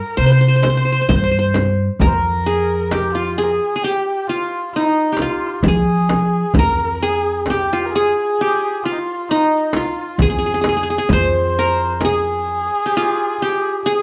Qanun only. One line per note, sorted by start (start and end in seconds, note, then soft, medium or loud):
0.00 0.85 A#4 medium
0.17 0.26 C5 medium
0.26 0.31 C5 medium
0.32 0.40 C5 medium
0.41 0.48 C5 medium
0.48 0.56 C5 medium
0.56 0.62 C5 medium
0.62 0.69 C5 medium
0.69 0.77 C5 soft
0.77 0.84 C5 medium
0.85 0.92 C5 medium
0.92 1.01 C5 medium
1.01 1.08 C5 medium
1.09 1.15 C5 medium
1.16 1.23 C5 medium
1.24 1.31 C5 medium
1.31 1.38 C5 medium
1.39 2.44 C5 medium
2.02 3.15 A#4 medium
2.46 2.98 G#4 medium
2.92 3.44 G4 medium
3.15 4.29 F4 medium
3.38 3.75 G#4 medium
3.76 3.90 G#4 medium
3.84 5.10 G4 medium
4.29 5.21 F4 medium
4.76 6.20 D#4 medium
5.12 5.74 G4 medium
5.22 6.56 F4 medium
5.68 6.89 G#4 medium
6.59 7.72 A#4 medium
7.03 7.56 G#4 medium
7.50 8.01 G4 medium
7.73 8.85 F4 medium
7.95 8.47 G#4 medium
8.41 9.66 G4 medium
8.85 9.76 F4 medium
9.31 10.75 D#4 medium
9.76 11.11 F4 medium
10.22 10.29 G#4 medium
10.30 10.38 G#4 medium
10.38 10.46 G#4 medium
10.46 10.54 G#4 soft
10.54 10.61 G#4 medium
10.61 10.68 G#4 medium
10.69 10.76 G#4 medium
10.77 10.83 G#4 medium
10.83 10.90 G#4 medium
10.90 10.98 G#4 medium
10.98 12.04 G#4 medium
11.13 12.18 C5 loud
11.59 12.72 A#4 medium
12.05 12.92 G#4 medium
12.86 13.42 G4 medium
12.97 14.02 F4 medium
13.42 13.92 G4 medium
13.86 14.02 G#4 loud